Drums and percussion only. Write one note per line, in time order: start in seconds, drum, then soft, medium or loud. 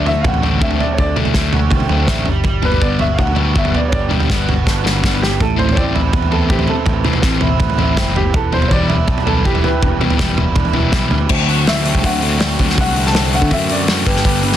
0.06 floor tom medium
0.24 kick loud
0.24 floor tom medium
0.24 mid tom medium
0.34 floor tom medium
0.43 floor tom medium
0.62 kick loud
0.71 floor tom medium
0.81 floor tom medium
0.98 kick loud
0.98 floor tom medium
1.17 floor tom medium
1.17 mid tom medium
1.25 floor tom medium
1.34 kick loud
1.34 snare medium
1.53 floor tom medium
1.53 mid tom medium
1.71 kick loud
1.71 floor tom medium
1.71 mid tom medium
1.80 floor tom medium
1.89 floor tom medium
2.08 kick loud
2.08 snare medium
2.26 floor tom medium
2.44 kick loud
2.44 floor tom medium
2.63 floor tom medium
2.72 floor tom medium
2.82 kick loud
2.99 floor tom medium
3.19 kick loud
3.19 floor tom medium
3.19 mid tom medium
3.27 floor tom medium
3.36 floor tom medium
3.56 kick loud
3.65 floor tom medium
3.75 floor tom medium
3.92 kick loud
3.92 floor tom medium
4.11 floor tom medium
4.11 mid tom medium
4.20 floor tom medium
4.30 kick loud
4.30 snare medium
4.49 floor tom medium
4.49 mid tom medium
4.67 kick loud
4.67 snare medium
4.86 snare medium
5.04 kick loud
5.04 snare medium
5.23 snare medium
5.40 kick loud
5.40 floor tom medium
5.59 floor tom medium
5.69 floor tom medium
5.77 kick loud
5.96 floor tom medium
6.13 kick loud
6.13 floor tom medium
6.13 mid tom medium
6.22 floor tom medium
6.32 floor tom medium
6.50 kick loud
6.59 floor tom medium
6.67 floor tom medium
6.86 kick loud
6.86 floor tom medium
7.04 floor tom medium
7.04 mid tom medium
7.13 floor tom medium
7.22 kick loud
7.22 snare medium
7.41 floor tom medium
7.41 mid tom medium
7.60 kick loud
7.60 floor tom medium
7.60 mid tom medium
7.70 floor tom medium
7.79 floor tom medium
7.97 kick loud
7.97 snare medium
8.16 floor tom medium
8.34 kick loud
8.34 floor tom medium
8.53 floor tom medium
8.62 floor tom medium
8.71 kick loud
8.90 floor tom medium
9.08 kick loud
9.08 floor tom medium
9.08 mid tom medium
9.18 floor tom medium
9.27 floor tom medium
9.45 kick loud
9.55 floor tom medium
9.64 floor tom medium
9.83 kick loud
9.83 floor tom medium
10.01 floor tom medium
10.01 mid tom medium
10.10 floor tom medium
10.19 kick loud
10.19 snare medium
10.38 floor tom medium
10.38 mid tom medium
10.56 kick loud
10.56 floor tom medium
10.56 mid tom medium
10.65 floor tom medium
10.73 floor tom medium
10.92 kick loud
10.92 snare medium
11.11 floor tom medium
11.29 kick loud
11.29 crash loud
11.49 open hi-hat medium
11.67 snare loud
11.67 open hi-hat medium
11.85 open hi-hat medium
11.95 kick medium
12.04 kick medium
12.04 open hi-hat medium
12.22 open hi-hat medium
12.40 snare loud
12.40 open hi-hat medium
12.59 kick medium
12.59 open hi-hat medium
12.69 snare soft
12.78 kick loud
12.78 open hi-hat medium
12.96 open hi-hat medium
13.06 snare soft
13.15 snare loud
13.15 open hi-hat medium
13.33 open hi-hat medium
13.42 kick medium
13.51 kick medium
13.51 open hi-hat medium
13.69 open hi-hat medium
13.88 snare loud
13.88 open hi-hat medium
14.06 kick medium
14.06 open hi-hat medium
14.16 snare soft
14.25 kick loud
14.25 open hi-hat medium
14.43 open hi-hat medium
14.52 snare soft